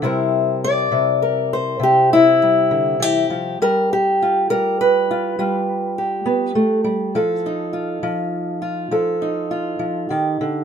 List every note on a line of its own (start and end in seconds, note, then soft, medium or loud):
0.02 0.90 C3 medium
0.02 2.41 G3 soft
0.02 2.12 E4 soft
0.02 1.21 A#4 soft
0.02 0.63 C5 soft
0.64 1.53 D5 loud
0.92 1.78 C3 medium
1.22 1.82 A#4 soft
1.53 2.42 C5 medium
1.79 3.55 C3 medium
1.79 2.12 G4 medium
2.13 3.02 E4 loud
2.42 3.61 G3 soft
2.71 3.00 D3 medium
3.00 3.30 E3 medium
3.00 3.61 G4 medium
3.30 3.60 F3 medium
3.62 4.50 G3 medium
3.62 3.90 A#4 medium
3.93 4.50 G4 medium
4.22 5.10 F4 soft
4.50 5.38 G3 medium
4.50 4.79 A#4 medium
4.81 5.98 B4 medium
5.11 5.39 F4 medium
5.39 6.83 G3 medium
5.39 7.12 F4 soft
5.98 7.12 G4 soft
6.26 6.55 B3 medium
6.55 6.84 A3 medium
6.84 7.15 G3 medium
7.15 8.02 F3 medium
7.15 8.91 A4 soft
7.46 9.21 D#4 soft
7.73 8.61 F4 soft
8.03 8.90 F3 medium
8.62 9.50 F4 medium
8.91 9.78 F3 medium
8.91 10.64 A4 soft
9.22 10.64 D#4 soft
9.51 10.11 F4 soft
9.79 10.10 F3 medium
10.10 10.40 D#3 medium
10.10 10.64 G4 medium
10.41 10.64 D3 medium